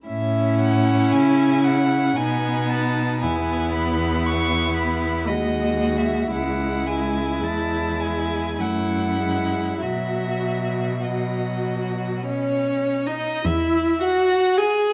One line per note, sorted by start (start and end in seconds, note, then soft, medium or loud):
0.06 1.14 A2 medium
0.06 2.19 C#4 medium
0.06 2.14 E4 medium
0.06 0.56 E5 medium
0.60 1.13 F#5 medium
1.12 2.17 C#3 medium
1.12 1.65 G#5 medium
1.64 2.18 F#5 medium
2.16 3.24 B2 medium
2.16 3.23 B3 medium
2.16 3.24 D#4 medium
2.16 2.70 G#5 medium
2.69 3.21 A5 medium
3.22 5.30 E2 medium
3.22 5.30 B3 medium
3.22 5.30 E4 soft
3.22 3.73 G#5 medium
3.74 4.27 B5 medium
4.26 4.76 C#6 medium
4.76 5.28 B5 medium
5.27 6.32 D#2 medium
5.27 6.33 G#3 soft
5.27 6.32 F#4 medium
5.27 5.99 D#5 medium
5.97 6.31 E5 medium
6.32 7.44 C#2 soft
6.32 8.60 G#3 soft
6.32 8.54 E4 soft
6.32 6.88 F#5 medium
6.87 7.44 G#5 medium
7.42 8.59 E2 soft
7.42 8.01 A5 medium
8.00 8.61 G#5 medium
8.58 9.84 F#2 soft
8.58 9.20 A3 soft
8.58 9.83 E4 soft
8.58 9.80 F#5 medium
9.21 9.81 G#3 soft
9.80 13.24 B2 soft
9.80 11.01 F#3 soft
9.80 11.03 F#4 soft
9.80 11.04 E5 medium
11.03 12.24 F#3 soft
11.03 12.23 F#4 soft
11.03 12.25 D#5 soft
12.25 13.08 C#4 medium
12.25 13.08 C#5 soft
13.06 13.45 D#4 soft
13.06 13.47 D#5 soft
13.45 14.36 E2 medium
13.45 14.00 E4 medium
13.45 14.02 E5 medium
14.01 14.59 F#4 medium
14.01 14.59 F#5 medium
14.56 14.93 G#4 medium
14.56 14.93 G#5 soft
14.56 14.93 G#5 medium